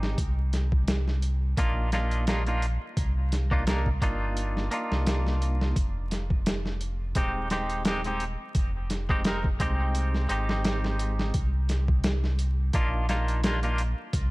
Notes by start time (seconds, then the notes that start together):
Already playing: G#1 G#3 C4 D#4 G4
0.03 snare
0.18 C2, kick, closed hi-hat
0.53 snare, closed hi-hat
0.72 kick
0.88 snare, closed hi-hat
1.08 snare
1.22 closed hi-hat
1.57 A#1 A#3 D4 D#4 F4, kick, closed hi-hat
1.92 A#3 D4 D#4 F4, snare, closed hi-hat
2.11 closed hi-hat
2.27 A#3 D4 D#4 F4, snare, closed hi-hat
2.46 A#3 D4 D#4 F4, closed hi-hat
2.62 closed hi-hat
2.97 C2, kick, closed hi-hat
3.32 snare, closed hi-hat
3.51 A#3 D4 D#4 F4, kick
3.67 A#3 D4 D#4 A#4, snare, closed hi-hat
3.86 kick
4.02 G1 A#3 D4 D#4 F4, kick, closed hi-hat
4.37 closed hi-hat
4.57 snare
4.71 A#3 D4 D#4 F4, closed hi-hat
4.91 C2, snare
5.07 snare, closed hi-hat
5.27 snare
5.42 closed hi-hat
5.61 snare
5.76 F1, kick, closed hi-hat
6.11 snare, closed hi-hat
6.30 kick
6.46 snare, closed hi-hat
6.66 snare
6.81 closed hi-hat
7.15 D#1 G#3 C4 D#4 G4, kick, closed hi-hat
7.50 G#3 C4 D#4 G4, snare, closed hi-hat
7.69 closed hi-hat
7.85 G#3 C4 D#4 G4, snare, closed hi-hat
8.04 G#3 C4 D#4 G4, closed hi-hat
8.20 closed hi-hat
8.55 F1, kick, closed hi-hat
8.90 snare, closed hi-hat
9.09 G#3 C4 D#4 G4, kick
9.24 G#3 C4 D#4 A#4, snare, closed hi-hat
9.44 kick
9.60 C2 G#3 C4 D#4 G4, kick, closed hi-hat
9.95 closed hi-hat
10.14 snare
10.29 G#1 G#3 C4 D#4 G4, closed hi-hat
10.49 snare
10.65 snare, closed hi-hat
10.84 snare
10.99 closed hi-hat
11.19 snare
11.34 C2, kick, closed hi-hat
11.69 snare, closed hi-hat
11.88 kick
12.04 snare, closed hi-hat
12.24 snare
12.39 closed hi-hat
12.73 A#1 A#3 D4 D#4 F4, kick, closed hi-hat
13.09 A#3 D4 D#4 F4, snare, closed hi-hat
13.28 closed hi-hat
13.43 A#3 D4 D#4 F4, snare, closed hi-hat
13.63 A#3 D4 D#4 F4, closed hi-hat
13.78 closed hi-hat
14.13 C2, kick, closed hi-hat